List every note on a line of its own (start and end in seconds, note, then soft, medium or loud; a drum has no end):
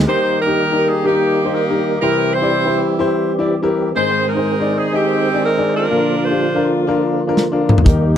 0.07 0.83 D#3 medium
0.07 2.00 D#3 medium
0.07 3.93 G3 medium
0.07 2.00 A#3 medium
0.07 0.38 D#4 medium
0.07 0.40 D#4 medium
0.07 0.38 G4 medium
0.07 3.93 G4 medium
0.07 0.39 G4 medium
0.07 0.39 A#4 medium
0.07 0.37 C5 loud
0.40 1.06 D#4 medium
0.40 1.05 G4 medium
0.40 0.89 A#4 loud
0.47 0.60 D#4 medium
0.47 0.61 G4 medium
0.47 0.61 A#4 medium
0.71 0.95 D#4 medium
0.71 0.96 G4 medium
0.71 0.96 A#4 medium
0.88 1.05 G#4 medium
1.04 1.99 A#3 medium
1.04 1.35 D#4 medium
1.04 1.53 D#4 medium
1.04 1.36 G4 medium
1.04 1.53 G4 loud
1.04 1.36 A#4 medium
1.44 1.58 D#4 medium
1.44 1.58 G4 medium
1.44 1.59 C5 medium
1.54 1.99 D#4 medium
1.54 1.99 G4 medium
1.54 2.00 A#4 loud
1.69 1.93 D#4 medium
1.69 1.93 G4 medium
1.69 1.94 A#4 medium
2.02 2.78 C3 medium
2.02 3.95 E3 medium
2.02 5.87 C4 medium
2.02 2.33 E4 medium
2.02 2.34 E4 medium
2.02 2.34 G4 medium
2.02 2.33 G4 medium
2.02 2.31 A#4 medium
2.02 2.34 C5 medium
2.34 3.28 E4 medium
2.34 3.28 G4 medium
2.34 2.82 C5 loud
2.42 2.55 E4 medium
2.42 2.55 G4 medium
2.42 2.56 D5 medium
2.66 2.90 E4 medium
2.66 2.90 G4 medium
2.66 2.91 C5 medium
2.99 3.30 E4 loud
2.99 3.30 G4 medium
2.99 3.31 C5 loud
3.39 3.52 E4 medium
3.39 3.52 G4 medium
3.39 3.53 D5 medium
3.63 3.87 E4 medium
3.63 3.87 G4 medium
3.63 3.88 A#4 loud
3.95 4.72 G#2 medium
3.95 5.89 D#3 medium
3.95 5.90 G#3 medium
3.95 4.27 D#4 medium
3.95 4.27 G#4 medium
3.95 4.76 G#4 medium
3.95 4.27 C5 medium
3.95 4.26 C5 loud
3.95 5.89 C5 medium
4.28 4.93 D#4 medium
4.28 4.77 A#4 loud
4.35 4.49 D#4 medium
4.35 4.50 G#4 medium
4.35 4.50 C5 medium
4.60 4.84 D#4 medium
4.60 4.85 G#4 medium
4.60 4.85 D5 medium
4.78 4.94 G#4 medium
4.92 5.88 C4 medium
4.92 5.24 D#4 medium
4.92 5.87 D#4 medium
4.92 5.43 G4 medium
4.92 5.24 G#4 medium
4.92 5.25 D#5 medium
5.33 5.47 D#4 medium
5.33 5.47 G#4 medium
5.33 5.47 D5 medium
5.44 5.73 A#4 loud
5.57 5.81 D#4 medium
5.57 5.82 G#4 medium
5.57 5.82 D5 medium
5.75 6.68 D4 medium
5.75 6.22 F4 medium
5.75 6.20 A#4 medium
5.90 6.67 A#2 medium
5.90 7.84 D3 medium
5.90 7.84 F3 medium
5.90 8.18 A#3 medium
5.90 6.22 D4 medium
5.90 6.22 F4 medium
5.90 7.84 F4 medium
5.90 6.22 A#4 medium
6.23 7.16 F4 medium
6.23 6.72 C5 medium
6.30 6.44 D4 medium
6.30 6.44 F4 medium
6.30 6.44 G4 medium
6.55 6.79 D4 medium
6.55 6.80 F4 medium
6.55 6.80 A#4 medium
6.87 7.19 D4 loud
6.87 7.19 F4 medium
6.87 7.20 A#4 loud
7.27 7.41 D4 medium
7.27 7.42 F4 medium
7.27 7.42 A#4 loud
7.37 snare medium
7.52 7.76 D4 medium
7.52 7.77 F4 medium
7.52 7.77 A#4 medium
7.69 mid tom loud
7.78 floor tom loud
7.84 8.18 D#2 loud
7.84 8.18 D#3 medium
7.84 8.18 G3 medium
7.84 8.16 D#4 loud
7.84 8.17 G4 medium
7.84 8.18 G4 medium
7.84 8.17 A#4 loud
7.84 kick loud
7.84 closed hi-hat loud